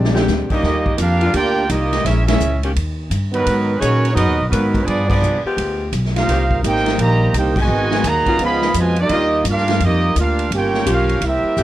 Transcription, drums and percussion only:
0.05 snare medium
0.16 snare medium
0.28 snare medium
0.28 hi-hat pedal medium
0.50 kick medium
0.50 crash medium
0.63 kick soft
0.63 snare soft
0.86 kick medium
0.98 kick soft
0.98 hi-hat pedal medium
0.98 ride medium
1.21 ride medium
1.34 kick soft
1.34 ride medium
1.69 kick soft
1.69 hi-hat pedal medium
1.69 ride medium
1.92 snare soft
1.92 ride medium
2.05 kick soft
2.05 snare soft
2.05 ride medium
2.28 snare medium
2.28 ride medium
2.40 hi-hat pedal medium
2.63 ride medium
2.76 kick soft
2.76 ride medium
3.11 kick soft
3.11 hi-hat pedal medium
3.11 ride medium
3.34 ride medium
3.46 kick soft
3.46 ride medium
3.82 kick soft
3.82 hi-hat pedal medium
3.82 ride medium
4.05 ride medium
4.17 kick soft
4.17 ride medium
4.52 kick soft
4.52 hi-hat pedal medium
4.52 ride medium
4.74 kick medium
4.74 ride medium
4.87 kick soft
4.87 ride medium
5.10 kick loud
5.10 crash medium
5.23 hi-hat pedal medium
5.57 kick soft
5.57 ride medium
5.93 kick soft
5.93 hi-hat pedal medium
5.93 ride medium
6.05 snare soft
6.16 snare soft
6.16 ride medium
6.28 kick soft
6.28 snare soft
6.28 ride medium
6.51 kick medium
6.63 kick soft
6.63 hi-hat pedal medium
6.63 ride medium
6.76 snare soft
6.86 snare medium
6.86 ride medium
6.98 kick soft
6.98 ride medium
7.33 kick soft
7.33 hi-hat pedal medium
7.33 ride medium
7.56 kick loud
7.56 crash medium
7.91 snare medium
8.04 kick soft
8.04 hi-hat pedal medium
8.04 ride medium
8.26 kick medium
8.26 ride medium
8.39 kick soft
8.39 ride medium
8.62 snare medium
8.74 kick soft
8.74 hi-hat pedal medium
8.74 ride medium
8.96 ride medium
9.09 kick soft
9.09 ride medium
9.45 kick soft
9.45 hi-hat pedal medium
9.45 ride medium
9.57 snare soft
9.68 snare medium
9.68 ride medium
9.80 kick soft
9.80 ride medium
10.16 kick soft
10.16 hi-hat pedal medium
10.16 ride medium
10.39 ride medium
10.51 kick soft
10.51 ride medium
10.74 snare soft
10.86 kick soft
10.86 hi-hat pedal medium
10.86 ride medium
11.09 ride medium
11.21 kick soft
11.21 ride medium
11.57 hi-hat pedal medium

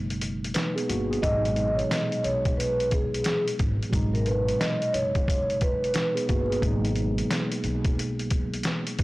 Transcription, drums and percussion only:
0.10 closed hi-hat soft
0.21 closed hi-hat medium
0.44 closed hi-hat medium
0.54 snare loud
0.54 closed hi-hat medium
0.78 closed hi-hat medium
0.90 closed hi-hat medium
1.13 closed hi-hat soft
1.23 kick loud
1.23 closed hi-hat medium
1.45 closed hi-hat medium
1.56 closed hi-hat medium
1.79 closed hi-hat medium
1.91 snare loud
1.91 closed hi-hat medium
2.12 closed hi-hat medium
2.24 closed hi-hat medium
2.45 kick medium
2.45 closed hi-hat medium
2.60 closed hi-hat medium
2.80 closed hi-hat soft
2.91 kick medium
2.91 closed hi-hat medium
3.14 closed hi-hat medium
3.24 snare loud
3.24 closed hi-hat medium
3.48 closed hi-hat medium
3.59 kick loud
3.59 closed hi-hat medium
3.83 closed hi-hat soft
3.93 kick loud
3.93 closed hi-hat medium
4.15 closed hi-hat soft
4.26 closed hi-hat medium
4.49 closed hi-hat medium
4.61 snare loud
4.61 closed hi-hat medium
4.82 closed hi-hat medium
4.94 closed hi-hat medium
5.15 kick medium
5.15 closed hi-hat medium
5.28 kick loud
5.28 closed hi-hat medium
5.50 closed hi-hat soft
5.61 kick medium
5.61 closed hi-hat medium
5.84 closed hi-hat medium
5.94 snare loud
5.94 closed hi-hat medium
6.17 closed hi-hat medium
6.29 kick loud
6.29 closed hi-hat medium
6.52 closed hi-hat soft
6.62 kick loud
6.62 closed hi-hat medium
6.85 closed hi-hat medium
6.96 closed hi-hat medium
7.18 closed hi-hat medium
7.31 snare loud
7.31 closed hi-hat medium
7.52 closed hi-hat medium
7.64 closed hi-hat medium
7.85 kick medium
7.85 closed hi-hat medium
7.99 closed hi-hat medium
8.19 closed hi-hat soft
8.30 kick medium
8.30 closed hi-hat medium
8.54 closed hi-hat medium
8.63 snare loud
8.63 closed hi-hat medium
8.87 closed hi-hat medium
8.99 kick loud
8.99 closed hi-hat medium

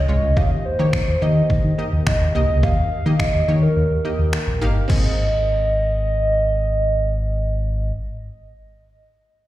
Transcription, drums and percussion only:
0.37 kick loud
0.93 finger snap loud
0.93 kick loud
1.50 kick loud
2.07 finger snap loud
2.07 kick loud
2.63 kick loud
3.20 finger snap loud
3.20 kick loud
4.33 finger snap loud
4.90 kick loud
4.90 crash medium

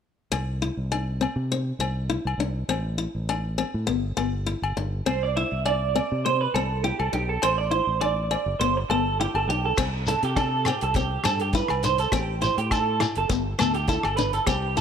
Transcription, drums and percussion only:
0.32 low agogo medium
0.92 low agogo medium
1.22 low agogo medium
1.81 low agogo medium
2.27 low agogo medium
2.70 low agogo soft
3.30 low agogo medium
3.58 low agogo medium
4.18 low agogo medium
4.64 low agogo medium
5.07 low agogo medium
5.66 low agogo medium
5.96 low agogo medium
6.55 low agogo medium
7.00 low agogo medium
7.42 low agogo medium
8.02 low agogo medium
8.31 low agogo medium
8.90 low agogo medium
9.35 low agogo medium
9.77 kick medium
9.77 cross-stick medium
9.77 crash medium
9.77 low agogo medium
9.77 shekere medium
10.07 closed hi-hat soft
10.07 shekere medium
10.23 closed hi-hat soft
10.36 kick medium
10.36 cross-stick medium
10.36 closed hi-hat soft
10.36 low agogo medium
10.36 shekere medium
10.65 cross-stick medium
10.65 closed hi-hat medium
10.65 low agogo medium
10.65 shekere medium
10.81 closed hi-hat soft
10.94 kick medium
10.94 closed hi-hat medium
10.94 shekere medium
11.24 cross-stick medium
11.24 closed hi-hat soft
11.24 low agogo medium
11.24 shekere medium
11.40 closed hi-hat soft
11.53 kick medium
11.53 closed hi-hat soft
11.53 shekere medium
11.68 cross-stick medium
11.68 low agogo medium
11.83 closed hi-hat medium
11.83 shekere loud
11.98 closed hi-hat soft
11.98 shekere soft
12.12 kick medium
12.12 cross-stick medium
12.12 closed hi-hat medium
12.12 low agogo medium
12.12 shekere medium
12.41 closed hi-hat soft
12.41 shekere medium
12.58 closed hi-hat soft
12.71 kick medium
12.71 cross-stick medium
12.71 closed hi-hat soft
12.71 low agogo medium
12.71 shekere medium
13.00 cross-stick medium
13.00 closed hi-hat soft
13.00 low agogo medium
13.00 shekere medium
13.15 closed hi-hat soft
13.29 kick medium
13.29 closed hi-hat soft
13.29 shekere medium
13.59 cross-stick medium
13.59 closed hi-hat soft
13.59 low agogo medium
13.59 shekere loud
13.74 closed hi-hat soft
13.88 kick medium
13.88 closed hi-hat soft
13.88 shekere medium
14.03 cross-stick medium
14.03 low agogo medium
14.17 closed hi-hat soft
14.17 shekere loud
14.33 closed hi-hat soft
14.33 shekere soft
14.47 kick medium
14.47 cross-stick medium
14.47 closed hi-hat soft
14.47 low agogo medium
14.47 shekere medium
14.77 closed hi-hat soft
14.77 shekere medium

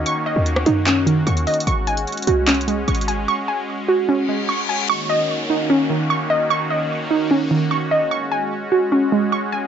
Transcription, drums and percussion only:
0.06 closed hi-hat medium
0.46 closed hi-hat medium
0.56 cross-stick loud
0.66 closed hi-hat medium
0.87 clap loud
0.87 closed hi-hat medium
1.07 closed hi-hat medium
1.27 closed hi-hat medium
1.37 closed hi-hat medium
1.47 closed hi-hat soft
1.47 open hi-hat medium
1.54 closed hi-hat medium
1.60 closed hi-hat medium
1.67 closed hi-hat medium
1.87 closed hi-hat medium
1.97 closed hi-hat medium
2.07 closed hi-hat soft
2.12 closed hi-hat medium
2.17 closed hi-hat medium
2.22 closed hi-hat medium
2.27 closed hi-hat medium
2.48 clap loud
2.48 closed hi-hat soft
2.54 closed hi-hat medium
2.61 closed hi-hat medium
2.68 closed hi-hat medium
2.88 closed hi-hat soft
2.95 closed hi-hat medium
3.01 closed hi-hat medium
3.08 closed hi-hat medium

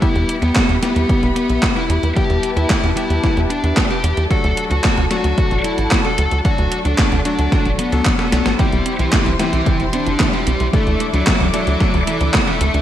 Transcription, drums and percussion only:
0.02 kick loud
0.02 closed hi-hat medium
0.16 closed hi-hat soft
0.29 closed hi-hat medium
0.42 closed hi-hat medium
0.56 kick loud
0.56 snare loud
0.56 clap medium
0.56 closed hi-hat soft
0.69 closed hi-hat soft
0.83 snare medium
0.83 closed hi-hat medium
0.96 closed hi-hat soft
1.09 kick loud
1.09 closed hi-hat soft
1.23 closed hi-hat soft
1.36 closed hi-hat medium
1.50 closed hi-hat soft
1.63 kick loud
1.63 snare loud
1.63 clap loud
1.63 closed hi-hat soft
1.76 closed hi-hat soft
1.90 closed hi-hat medium
2.03 closed hi-hat soft
2.16 kick loud
2.16 closed hi-hat medium
2.30 closed hi-hat soft
2.43 closed hi-hat medium
2.57 closed hi-hat medium
2.70 kick loud
2.70 snare loud
2.70 clap medium
2.70 closed hi-hat soft
2.84 closed hi-hat soft
2.97 closed hi-hat medium
3.10 closed hi-hat medium
3.24 kick loud
3.24 snare medium
3.24 closed hi-hat soft
3.37 closed hi-hat soft
3.50 closed hi-hat medium
3.64 closed hi-hat medium
3.77 kick loud
3.77 snare loud
3.77 clap loud
3.77 closed hi-hat soft
3.91 closed hi-hat soft
4.04 closed hi-hat medium
4.17 closed hi-hat medium
4.31 kick loud
4.31 closed hi-hat medium
4.44 closed hi-hat soft
4.57 closed hi-hat medium
4.71 closed hi-hat medium
4.84 kick loud
4.84 snare loud
4.84 clap medium
4.84 closed hi-hat medium
4.97 closed hi-hat soft
5.11 snare medium
5.11 closed hi-hat loud
5.24 closed hi-hat medium
5.38 kick loud
5.38 closed hi-hat medium
5.51 closed hi-hat soft
5.64 closed hi-hat medium
5.78 closed hi-hat medium
5.91 kick loud
5.91 snare loud
5.91 clap medium
5.91 closed hi-hat medium
6.05 closed hi-hat soft
6.18 closed hi-hat medium
6.31 closed hi-hat medium
6.45 kick loud
6.45 closed hi-hat medium
6.58 closed hi-hat soft
6.72 closed hi-hat medium
6.85 closed hi-hat medium
6.99 kick loud
6.99 snare loud
6.99 clap medium
6.99 closed hi-hat medium
7.12 closed hi-hat soft
7.25 closed hi-hat medium
7.39 closed hi-hat medium
7.52 kick loud
7.52 snare medium
7.52 closed hi-hat medium
7.65 closed hi-hat soft
7.79 closed hi-hat medium
7.92 closed hi-hat medium
8.06 kick loud
8.06 snare medium
8.06 clap loud
8.06 closed hi-hat medium
8.19 snare medium
8.19 closed hi-hat soft
8.32 snare medium
8.32 closed hi-hat loud
8.46 snare medium
8.46 closed hi-hat medium
8.59 kick loud
8.59 closed hi-hat medium
8.72 closed hi-hat soft
8.86 closed hi-hat medium
8.99 closed hi-hat medium
9.13 kick loud
9.13 snare loud
9.13 clap loud
9.13 closed hi-hat medium
9.26 closed hi-hat soft
9.39 snare medium
9.39 closed hi-hat loud
9.53 closed hi-hat medium
9.66 kick loud
9.66 closed hi-hat medium
9.80 closed hi-hat soft
9.93 closed hi-hat medium
10.07 closed hi-hat medium
10.20 kick loud
10.20 snare loud
10.20 clap loud
10.20 closed hi-hat medium
10.33 closed hi-hat soft
10.47 closed hi-hat loud
10.60 closed hi-hat medium
10.73 kick loud
10.73 closed hi-hat medium
10.87 closed hi-hat soft
11.00 closed hi-hat medium
11.14 closed hi-hat medium
11.27 kick loud
11.27 snare loud
11.27 clap loud
11.27 closed hi-hat medium
11.40 closed hi-hat soft
11.54 closed hi-hat medium
11.67 closed hi-hat medium
11.80 kick loud
11.80 snare medium
11.80 closed hi-hat medium
11.94 closed hi-hat soft
12.07 closed hi-hat medium
12.21 closed hi-hat medium
12.34 kick loud
12.34 snare loud
12.34 clap loud
12.34 closed hi-hat medium
12.48 closed hi-hat soft
12.61 closed hi-hat medium
12.74 closed hi-hat medium

